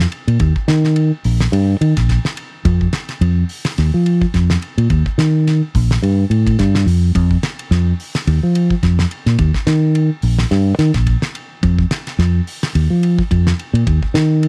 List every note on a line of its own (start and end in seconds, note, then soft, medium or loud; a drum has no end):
0.00 snare medium
0.12 ride bell medium
0.27 0.37 A#2 medium
0.27 ride bell medium
0.40 0.52 D#2 loud
0.40 kick medium
0.40 ride bell soft
0.56 kick medium
0.68 1.10 D#3 loud
0.68 snare medium
0.68 ride bell medium
0.84 snare soft
0.96 ride bell medium
1.24 1.46 A#1 medium
1.24 open hi-hat medium
1.41 snare medium
1.52 1.74 G2 loud
1.52 ride bell medium
1.81 1.93 D#3 medium
1.81 ride bell medium
1.97 2.18 A#1 medium
1.97 kick medium
1.97 snare soft
1.97 ride bell medium
2.09 kick medium
2.09 snare soft
2.09 ride bell medium
2.25 snare medium
2.37 ride bell medium
2.65 2.86 F2 loud
2.65 kick medium
2.65 ride bell medium
2.81 kick medium
2.93 snare medium
2.93 ride bell medium
3.09 snare soft
3.09 ride bell medium
3.21 3.42 F2 loud
3.21 ride bell medium
3.49 open hi-hat medium
3.65 snare medium
3.65 ride bell medium
3.78 3.90 D#2 loud
3.78 snare soft
3.78 ride bell medium
3.94 4.24 F3 medium
4.06 ride bell medium
4.21 kick medium
4.34 4.55 F2 medium
4.34 kick medium
4.34 snare soft
4.34 ride bell soft
4.50 snare medium
4.62 ride bell medium
4.78 4.87 A#2 medium
4.78 ride bell medium
4.90 5.02 D#2 loud
4.90 kick medium
4.90 ride bell soft
5.06 kick medium
5.18 5.60 D#3 loud
5.18 snare medium
5.18 ride bell medium
5.47 snare soft
5.47 ride bell medium
5.75 5.96 A#1 medium
5.75 kick medium
5.75 open hi-hat medium
5.91 snare medium
6.02 6.24 G2 loud
6.02 ride bell medium
6.30 6.55 A2 medium
6.30 ride bell medium
6.47 kick medium
6.47 ride bell medium
6.59 6.84 G2 medium
6.59 kick medium
6.59 snare soft
6.59 ride bell medium
6.75 snare medium
6.86 7.12 F2 medium
6.86 open hi-hat medium
7.15 7.36 F2 loud
7.15 kick medium
7.15 ride bell medium
7.31 kick medium
7.43 snare medium
7.43 ride bell medium
7.59 ride bell medium
7.71 7.92 F2 loud
7.71 snare soft
7.71 ride bell medium
8.00 open hi-hat medium
8.15 snare medium
8.15 ride bell medium
8.27 8.39 D#2 loud
8.27 ride bell medium
8.43 8.73 F3 medium
8.55 ride bell medium
8.71 kick medium
8.83 9.04 F2 medium
8.83 kick medium
8.83 snare soft
8.83 ride bell soft
8.99 snare medium
9.11 ride bell medium
9.26 9.36 A#2 medium
9.26 snare soft
9.26 ride bell soft
9.39 9.50 D#2 loud
9.39 kick medium
9.39 ride bell medium
9.54 kick medium
9.54 snare soft
9.67 10.09 D#3 loud
9.67 snare medium
9.67 ride bell medium
9.95 ride bell medium
10.22 10.44 A#1 medium
10.22 open hi-hat medium
10.39 snare medium
10.51 10.72 G2 loud
10.51 snare soft
10.51 ride bell soft
10.79 10.90 D#3 medium
10.79 snare soft
10.79 ride bell medium
10.94 11.15 A#1 medium
10.94 kick medium
10.94 snare soft
10.94 ride bell medium
11.07 kick medium
11.07 ride bell medium
11.22 snare medium
11.35 ride bell medium
11.63 11.84 F2 loud
11.63 kick medium
11.63 ride bell medium
11.79 kick medium
11.91 snare medium
11.91 ride bell medium
12.07 snare soft
12.07 ride bell medium
12.19 12.40 F2 loud
12.19 snare soft
12.19 ride bell medium
12.47 open hi-hat medium
12.63 snare medium
12.63 ride bell medium
12.75 12.87 D#2 loud
12.75 ride bell medium
12.90 13.21 F3 medium
13.03 ride bell medium
13.19 kick medium
13.31 13.52 F2 medium
13.31 kick medium
13.31 ride bell medium
13.47 snare medium
13.59 ride bell medium
13.73 13.83 A#2 medium
13.73 ride bell medium
13.87 13.98 D#2 loud
13.87 kick loud
13.87 ride bell medium
14.03 kick medium
14.14 14.48 D#3 loud
14.14 snare medium
14.14 ride bell medium
14.43 ride bell medium